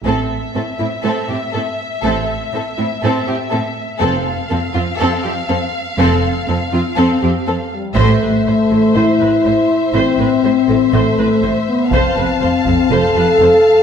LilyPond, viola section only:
\new Staff \with { instrumentName = "Viola section" } { \time 4/4 \key a \minor \tempo 4 = 121 c'8 r8 c'8 c'8 c'8 c'8 c'8 r8 | c'8 r8 c'8 c'8 c'8 c'8 c'8 r8 | c'8 r8 c'8 c'8 c'8 c'8 c'8 r8 | c'8 r8 c'8 c'8 c'8 c'8 c'8 r8 |
c''8 b'8 c''8 a'8 c''8 b'8 c''8 r8 | c''8 b'8 c''8 a'8 c''8 b'8 c''8 r8 | c''8 b'8 c''8 a'8 c''8 b'8 c''8 r8 | }